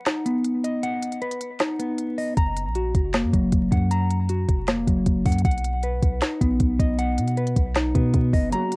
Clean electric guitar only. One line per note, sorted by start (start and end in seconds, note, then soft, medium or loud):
0.00 0.83 B4 medium
0.00 0.45 F#5 loud
0.06 1.22 D#4 medium
0.26 1.41 B3 medium
0.64 1.79 D#5 medium
0.83 1.99 F#5 loud
1.22 2.37 B4 medium
1.60 2.37 D#4 medium
1.79 2.37 B3 medium
2.18 2.37 D#5 medium
2.37 3.52 A#5 loud
2.75 3.91 F#4 medium
3.14 4.29 A#3 medium
3.33 4.49 F#3 medium
3.72 4.87 F#5 medium
3.91 5.06 A#5 loud
4.29 5.45 F#4 medium
4.68 5.45 A#3 medium
4.87 5.45 F#3 medium
5.26 5.44 F#5 medium
5.45 6.60 F#5 loud
5.83 6.99 B4 medium
6.22 7.37 D#4 medium
6.41 7.56 B3 medium
6.79 7.94 D#5 medium
6.99 8.14 F#5 loud
7.37 8.53 B4 medium
7.76 8.53 D#4 medium
7.95 8.53 B3 medium
8.33 8.52 D#5 medium
8.53 8.76 A#5 loud